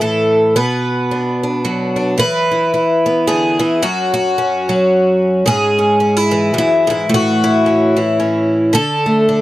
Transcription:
0.00 0.53 A2 medium
0.00 0.56 E3 medium
0.00 0.55 A3 medium
0.00 0.54 E4 soft
0.00 0.56 A4 medium
0.56 2.20 B2 medium
0.56 2.18 B4 medium
1.11 1.42 D4 soft
1.43 1.95 D4 soft
1.65 2.16 F#3 medium
1.96 2.16 D4 soft
2.18 3.58 E3 medium
2.18 3.27 B4 loud
2.51 2.73 E4 soft
2.74 3.80 E4 soft
3.06 3.80 B3 medium
3.27 3.60 D3 medium
3.27 3.82 G#4 medium
3.59 3.82 E3 medium
3.82 5.45 F#2 medium
3.82 4.12 F#4 medium
4.14 5.46 F#4 medium
4.38 5.78 C#4 medium
4.69 5.44 F#3 medium
5.46 6.53 G#2 medium
5.46 7.11 G#4 loud
5.78 5.99 C#4 soft
6.00 6.17 C#4 soft
6.17 6.55 E4 soft
6.31 7.95 E3 medium
6.54 6.86 F#2 medium
6.58 6.89 E4 medium
6.87 7.09 G#2 medium
6.87 7.11 E4 medium
7.09 8.71 A2 medium
7.14 7.98 F#4 medium
7.44 8.75 E4 medium
7.66 8.18 C#4 medium
7.97 8.74 E3 medium
8.20 8.71 C#4 soft
8.73 9.41 D3 medium
8.73 9.41 A4 loud
9.06 9.41 A3 soft
9.29 9.41 D4 medium

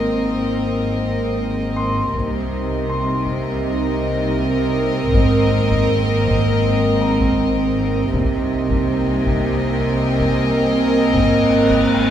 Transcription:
0.00 2.11 G#1 soft
0.00 2.10 G#2 soft
0.00 2.11 A#3 soft
0.00 2.10 C4 soft
0.00 2.10 A#4 soft
0.00 2.11 D#5 soft
1.76 2.88 C6 medium
2.14 5.11 C2 medium
2.14 5.10 C3 medium
2.14 7.96 A#3 medium
2.14 8.10 C4 medium
2.14 5.10 D#4 medium
2.14 8.10 A#4 medium
2.14 8.10 D#5 medium
2.14 taiko soft
2.89 5.10 C6 soft
3.27 taiko soft
5.14 8.10 G#1 medium
5.14 8.10 G#2 medium
5.14 7.96 C4 medium
5.14 taiko medium
5.70 taiko medium
6.27 taiko medium
7.02 9.23 A#5 medium
7.21 taiko medium
8.13 11.15 C2 medium
8.13 11.14 C3 medium
8.13 12.10 A#3 medium
8.13 12.10 C4 medium
8.13 11.09 D#4 medium
8.13 12.10 A#4 medium
8.13 12.10 D#5 medium
8.13 12.10 G5 soft
8.13 taiko medium
8.70 taiko medium
8.91 12.10 G#5 soft
9.27 taiko medium
10.20 taiko medium
11.14 12.10 G#1 soft
11.14 12.10 G#2 soft
11.14 12.10 C4 soft
11.14 taiko medium
11.14 reverse cymbal soft
11.70 taiko medium

